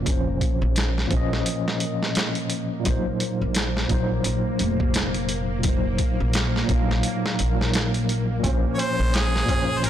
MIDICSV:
0, 0, Header, 1, 7, 480
1, 0, Start_track
1, 0, Tempo, 697674
1, 44, Time_signature, 4, 2, 24, 8
1, 6811, End_track
2, 0, Start_track
2, 0, Title_t, "Harmonica"
2, 0, Program_c, 0, 22
2, 6015, Note_on_c, 0, 73, 62
2, 6059, Note_on_c, 0, 72, 84
2, 6069, Note_off_c, 0, 73, 0
2, 6301, Note_on_c, 0, 68, 83
2, 6311, Note_off_c, 0, 72, 0
2, 6731, Note_on_c, 0, 72, 68
2, 6741, Note_off_c, 0, 68, 0
2, 6788, Note_on_c, 0, 70, 98
2, 6798, Note_off_c, 0, 72, 0
2, 6811, Note_off_c, 0, 70, 0
2, 6811, End_track
3, 0, Start_track
3, 0, Title_t, "Synth drone"
3, 0, Program_c, 1, 95
3, 0, Note_on_c, 1, 58, 77
3, 6811, Note_off_c, 1, 58, 0
3, 6811, End_track
4, 0, Start_track
4, 0, Title_t, "Tine electric piano"
4, 0, Program_c, 2, 4
4, 0, Control_c, 2, 64, 127
4, 0, Note_on_c, 2, 46, 85
4, 0, Note_on_c, 2, 53, 80
4, 0, Note_on_c, 2, 61, 79
4, 0, Note_on_c, 2, 72, 91
4, 16, Note_off_c, 2, 46, 0
4, 16, Note_on_c, 2, 46, 67
4, 37, Note_off_c, 2, 53, 0
4, 37, Note_on_c, 2, 53, 66
4, 59, Note_off_c, 2, 61, 0
4, 59, Note_on_c, 2, 61, 62
4, 82, Note_off_c, 2, 72, 0
4, 82, Note_on_c, 2, 72, 74
4, 726, Note_off_c, 2, 46, 0
4, 736, Note_off_c, 2, 53, 0
4, 736, Note_on_c, 2, 46, 88
4, 748, Note_off_c, 2, 61, 0
4, 759, Note_off_c, 2, 72, 0
4, 759, Note_on_c, 2, 53, 83
4, 780, Note_on_c, 2, 61, 77
4, 803, Note_on_c, 2, 75, 97
4, 1918, Note_off_c, 2, 46, 0
4, 1926, Note_on_c, 2, 46, 84
4, 1937, Note_off_c, 2, 53, 0
4, 1948, Note_off_c, 2, 61, 0
4, 1951, Note_on_c, 2, 54, 80
4, 1959, Note_off_c, 2, 75, 0
4, 1972, Note_on_c, 2, 63, 84
4, 1974, Control_c, 2, 64, 0
4, 1996, Note_on_c, 2, 72, 95
4, 2101, Control_c, 2, 64, 127
4, 2641, Note_off_c, 2, 46, 0
4, 2653, Note_off_c, 2, 54, 0
4, 2664, Note_off_c, 2, 63, 0
4, 2672, Note_on_c, 2, 46, 81
4, 2676, Note_off_c, 2, 72, 0
4, 2688, Note_on_c, 2, 54, 78
4, 2693, Note_on_c, 2, 63, 84
4, 2711, Note_on_c, 2, 72, 98
4, 2824, Note_off_c, 2, 46, 0
4, 2832, Note_off_c, 2, 54, 0
4, 2834, Note_off_c, 2, 63, 0
4, 2843, Note_off_c, 2, 72, 0
4, 3847, Note_on_c, 2, 46, 71
4, 3869, Note_on_c, 2, 54, 66
4, 3892, Note_on_c, 2, 63, 65
4, 3916, Note_on_c, 2, 72, 75
4, 4562, Note_off_c, 2, 46, 0
4, 4570, Note_on_c, 2, 46, 88
4, 4572, Note_off_c, 2, 54, 0
4, 4584, Note_off_c, 2, 63, 0
4, 4595, Note_on_c, 2, 54, 83
4, 4596, Note_off_c, 2, 72, 0
4, 4617, Note_on_c, 2, 63, 82
4, 4642, Note_on_c, 2, 77, 93
4, 5179, Note_off_c, 2, 46, 0
4, 5191, Note_off_c, 2, 54, 0
4, 5193, Note_on_c, 2, 46, 74
4, 5202, Note_off_c, 2, 63, 0
4, 5214, Note_on_c, 2, 54, 66
4, 5215, Note_off_c, 2, 77, 0
4, 5236, Note_on_c, 2, 63, 65
4, 5261, Note_on_c, 2, 70, 77
4, 5765, Note_off_c, 2, 46, 0
4, 5773, Note_on_c, 2, 46, 85
4, 5776, Note_off_c, 2, 54, 0
4, 5786, Note_off_c, 2, 63, 0
4, 5795, Note_on_c, 2, 53, 79
4, 5799, Note_off_c, 2, 70, 0
4, 5815, Control_c, 2, 64, 0
4, 5815, Note_on_c, 2, 61, 82
4, 5840, Note_on_c, 2, 72, 90
4, 5946, Control_c, 2, 64, 127
4, 6484, Note_off_c, 2, 46, 0
4, 6495, Note_off_c, 2, 53, 0
4, 6503, Note_on_c, 2, 46, 91
4, 6506, Note_off_c, 2, 61, 0
4, 6518, Note_off_c, 2, 72, 0
4, 6518, Note_on_c, 2, 53, 79
4, 6526, Note_on_c, 2, 61, 79
4, 6540, Note_on_c, 2, 72, 93
4, 6659, Note_off_c, 2, 46, 0
4, 6667, Note_off_c, 2, 53, 0
4, 6671, Note_off_c, 2, 61, 0
4, 6677, Note_off_c, 2, 72, 0
4, 6811, End_track
5, 0, Start_track
5, 0, Title_t, "Upright bass"
5, 0, Program_c, 3, 32
5, 0, Note_on_c, 3, 29, 89
5, 264, Note_off_c, 3, 29, 0
5, 424, Note_on_c, 3, 34, 82
5, 745, Note_off_c, 3, 34, 0
5, 767, Note_on_c, 3, 34, 79
5, 982, Note_off_c, 3, 34, 0
5, 1966, Note_on_c, 3, 34, 99
5, 2088, Note_off_c, 3, 34, 0
5, 2349, Note_on_c, 3, 34, 80
5, 2668, Note_off_c, 3, 34, 0
5, 2686, Note_on_c, 3, 34, 81
5, 2901, Note_off_c, 3, 34, 0
5, 2929, Note_on_c, 3, 34, 83
5, 3049, Note_off_c, 3, 34, 0
5, 3168, Note_on_c, 3, 29, 90
5, 4107, Note_off_c, 3, 29, 0
5, 4268, Note_on_c, 3, 34, 78
5, 4587, Note_off_c, 3, 34, 0
5, 4605, Note_on_c, 3, 34, 81
5, 4821, Note_off_c, 3, 34, 0
5, 5092, Note_on_c, 3, 34, 84
5, 5789, Note_off_c, 3, 34, 0
5, 5809, Note_on_c, 3, 34, 98
5, 5929, Note_off_c, 3, 34, 0
5, 6187, Note_on_c, 3, 34, 83
5, 6507, Note_off_c, 3, 34, 0
5, 6530, Note_on_c, 3, 34, 80
5, 6743, Note_off_c, 3, 34, 0
5, 6770, Note_on_c, 3, 34, 79
5, 6811, Note_off_c, 3, 34, 0
5, 6811, End_track
6, 0, Start_track
6, 0, Title_t, "Tabla"
6, 5803, Note_on_c, 9, 60, 51
6, 5871, Note_off_c, 9, 60, 0
6, 6041, Note_on_c, 9, 60, 77
6, 6110, Note_off_c, 9, 60, 0
6, 6194, Note_on_c, 9, 60, 33
6, 6263, Note_off_c, 9, 60, 0
6, 6285, Note_on_c, 9, 60, 46
6, 6354, Note_off_c, 9, 60, 0
6, 6525, Note_on_c, 9, 64, 65
6, 6527, Note_on_c, 9, 60, 84
6, 6593, Note_off_c, 9, 64, 0
6, 6596, Note_off_c, 9, 60, 0
6, 6666, Note_on_c, 9, 60, 38
6, 6735, Note_off_c, 9, 60, 0
6, 6764, Note_on_c, 9, 60, 44
6, 6811, Note_off_c, 9, 60, 0
6, 6811, End_track
7, 0, Start_track
7, 0, Title_t, "Drums"
7, 42, Note_on_c, 9, 36, 105
7, 44, Note_on_c, 9, 42, 89
7, 111, Note_off_c, 9, 36, 0
7, 113, Note_off_c, 9, 42, 0
7, 282, Note_on_c, 9, 36, 91
7, 284, Note_on_c, 9, 42, 63
7, 351, Note_off_c, 9, 36, 0
7, 352, Note_off_c, 9, 42, 0
7, 522, Note_on_c, 9, 42, 78
7, 535, Note_on_c, 9, 38, 109
7, 591, Note_off_c, 9, 42, 0
7, 603, Note_off_c, 9, 38, 0
7, 674, Note_on_c, 9, 38, 37
7, 742, Note_off_c, 9, 38, 0
7, 761, Note_on_c, 9, 42, 58
7, 762, Note_on_c, 9, 36, 82
7, 830, Note_off_c, 9, 42, 0
7, 831, Note_off_c, 9, 36, 0
7, 916, Note_on_c, 9, 38, 44
7, 985, Note_off_c, 9, 38, 0
7, 1004, Note_on_c, 9, 42, 85
7, 1073, Note_off_c, 9, 42, 0
7, 1154, Note_on_c, 9, 38, 50
7, 1223, Note_off_c, 9, 38, 0
7, 1240, Note_on_c, 9, 42, 64
7, 1309, Note_off_c, 9, 42, 0
7, 1394, Note_on_c, 9, 38, 38
7, 1463, Note_off_c, 9, 38, 0
7, 1480, Note_on_c, 9, 42, 77
7, 1493, Note_on_c, 9, 38, 115
7, 1549, Note_off_c, 9, 42, 0
7, 1562, Note_off_c, 9, 38, 0
7, 1618, Note_on_c, 9, 42, 38
7, 1687, Note_off_c, 9, 42, 0
7, 1717, Note_on_c, 9, 42, 68
7, 1786, Note_off_c, 9, 42, 0
7, 1962, Note_on_c, 9, 42, 83
7, 1963, Note_on_c, 9, 36, 110
7, 2031, Note_off_c, 9, 42, 0
7, 2032, Note_off_c, 9, 36, 0
7, 2203, Note_on_c, 9, 42, 66
7, 2272, Note_off_c, 9, 42, 0
7, 2439, Note_on_c, 9, 42, 88
7, 2451, Note_on_c, 9, 38, 109
7, 2508, Note_off_c, 9, 42, 0
7, 2520, Note_off_c, 9, 38, 0
7, 2592, Note_on_c, 9, 38, 41
7, 2661, Note_off_c, 9, 38, 0
7, 2679, Note_on_c, 9, 42, 61
7, 2683, Note_on_c, 9, 36, 87
7, 2748, Note_off_c, 9, 42, 0
7, 2751, Note_off_c, 9, 36, 0
7, 2919, Note_on_c, 9, 42, 76
7, 2988, Note_off_c, 9, 42, 0
7, 3160, Note_on_c, 9, 42, 68
7, 3229, Note_off_c, 9, 42, 0
7, 3302, Note_on_c, 9, 36, 90
7, 3371, Note_off_c, 9, 36, 0
7, 3399, Note_on_c, 9, 42, 82
7, 3411, Note_on_c, 9, 38, 105
7, 3467, Note_off_c, 9, 42, 0
7, 3480, Note_off_c, 9, 38, 0
7, 3539, Note_on_c, 9, 42, 40
7, 3608, Note_off_c, 9, 42, 0
7, 3637, Note_on_c, 9, 42, 67
7, 3706, Note_off_c, 9, 42, 0
7, 3876, Note_on_c, 9, 42, 85
7, 3882, Note_on_c, 9, 36, 110
7, 3945, Note_off_c, 9, 42, 0
7, 3951, Note_off_c, 9, 36, 0
7, 4118, Note_on_c, 9, 42, 63
7, 4122, Note_on_c, 9, 36, 90
7, 4186, Note_off_c, 9, 42, 0
7, 4191, Note_off_c, 9, 36, 0
7, 4358, Note_on_c, 9, 42, 84
7, 4371, Note_on_c, 9, 38, 101
7, 4427, Note_off_c, 9, 42, 0
7, 4440, Note_off_c, 9, 38, 0
7, 4514, Note_on_c, 9, 38, 39
7, 4583, Note_off_c, 9, 38, 0
7, 4603, Note_on_c, 9, 36, 87
7, 4603, Note_on_c, 9, 42, 61
7, 4671, Note_off_c, 9, 42, 0
7, 4672, Note_off_c, 9, 36, 0
7, 4754, Note_on_c, 9, 38, 45
7, 4823, Note_off_c, 9, 38, 0
7, 4838, Note_on_c, 9, 42, 78
7, 4907, Note_off_c, 9, 42, 0
7, 4993, Note_on_c, 9, 38, 53
7, 5062, Note_off_c, 9, 38, 0
7, 5084, Note_on_c, 9, 42, 63
7, 5153, Note_off_c, 9, 42, 0
7, 5237, Note_on_c, 9, 38, 42
7, 5305, Note_off_c, 9, 38, 0
7, 5322, Note_on_c, 9, 42, 79
7, 5334, Note_on_c, 9, 38, 114
7, 5391, Note_off_c, 9, 42, 0
7, 5403, Note_off_c, 9, 38, 0
7, 5465, Note_on_c, 9, 42, 44
7, 5534, Note_off_c, 9, 42, 0
7, 5567, Note_on_c, 9, 42, 67
7, 5636, Note_off_c, 9, 42, 0
7, 5805, Note_on_c, 9, 36, 112
7, 5807, Note_on_c, 9, 42, 89
7, 5874, Note_off_c, 9, 36, 0
7, 5875, Note_off_c, 9, 42, 0
7, 6049, Note_on_c, 9, 42, 66
7, 6118, Note_off_c, 9, 42, 0
7, 6287, Note_on_c, 9, 42, 82
7, 6299, Note_on_c, 9, 38, 110
7, 6356, Note_off_c, 9, 42, 0
7, 6368, Note_off_c, 9, 38, 0
7, 6439, Note_on_c, 9, 38, 39
7, 6507, Note_off_c, 9, 38, 0
7, 6526, Note_on_c, 9, 36, 83
7, 6529, Note_on_c, 9, 42, 61
7, 6595, Note_off_c, 9, 36, 0
7, 6598, Note_off_c, 9, 42, 0
7, 6769, Note_on_c, 9, 42, 79
7, 6811, Note_off_c, 9, 42, 0
7, 6811, End_track
0, 0, End_of_file